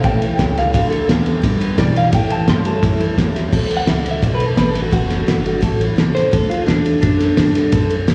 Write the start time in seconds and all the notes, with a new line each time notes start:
0.02 A1 A2 E3 A3 C#4 E4 A4 G5, kick, ride
0.21 A3 C#4 E4 A4, muted upright bass stroke, ride
0.38 C#2 A2 F#3 A3 C#4 E4 A4, kick, snare, ride
0.56 A2 F#3 A3 C#4 E4 A4 F5, snare, ride
0.73 D2 D3 A3 D4 F#4 A4 F5, kick, ride
0.90 D4 F#4 A4, ride
1.08 E2 D3 A3 B3 D4 F#4 A4, snare, ride
1.26 D3 B3 D4 F#4 A4, ride
1.42 G2 D3 G3 D4 G4 B4, kick, ride
1.60 D4 G4 B4, ride
1.78 G2 B2 E3 G3 D4 G4 B4 D5, kick, snare, ride
1.95 G2 E3 D4 G4 B4 F5, ride
2.12 A2 E3 A3 C#4 E4 A4 G5, kick, ride
2.30 A3 C#4 E4 A4 A5, ride
2.48 G2 A2 F#3 A3 C#4 E4 A4 C6, snare, ride
2.64 A2 F#3 A3 C#4 E4 A4 A5, ride
2.82 F#2 A2 E3 A3 C#4 E4 A4, kick, ride
3.00 A3 C#4 E4 A4, ride
3.16 E2 A2 F#3 A3 C#4 E4 A4, kick, snare, ride
3.34 A2 F#3 A3 C#4 E4 A4, snare, ride
3.52 D2 D3 A3 D4 F#4 A4, kick, crash
3.69 D4 F#4 A4, ride
3.77 F#5
3.87 C#2 A3 D4 F#4 A4 E5, snare, ride
4.00 D5
4.05 D4 F#4 A4, ride
4.11 E5
4.22 B1 D3 A3 D4 F#4 A4 D5, kick, ride
4.35 B4
4.40 D4 F#4 A4, ride
4.46 A4
4.55 A1 A3 D4 F#4 A4 B4, snare, ride
4.71 A4
4.75 D4 F#4, ride
4.82 F#4
4.91 F#1 D3 A3 D4 F#4 A4, kick, ride
5.08 D4 F#4 A4, snare, ride
5.27 G1 A3 D4 F#4 A4, snare, ride
5.43 D4 F#4 A4, ride
5.61 A1 D3 A3 D4 F#4 A4, kick, ride
5.78 D4 F#4 A4, ride
5.96 C#2 A3 D4 F#4 A4, snare, ride
6.13 D4 F#4 A4 C5, muted upright bass stroke, snare, ride
6.31 D2 D3 A3 D4 F#4 A4, kick, ride
6.49 D4 F4 F#4 A4, ride
6.66 E2 A3 D4 F#4 A4, snare, ride
6.84 D4 F#4 A4, ride
7.01 F#2 D3 A3 D4 F#4 A4, kick, ride
7.19 D4 F#4 A4, snare, ride
7.37 G2 A3 D4 F#4 A4, snare, ride
7.55 D4 F#4 A4, snare, ride
7.72 F#2 D3 A3 D4 F#4 A4, kick, ride
7.90 F#4 A4, ride
7.94 D4
8.07 G2 A3 D4 F#4 A4, snare, ride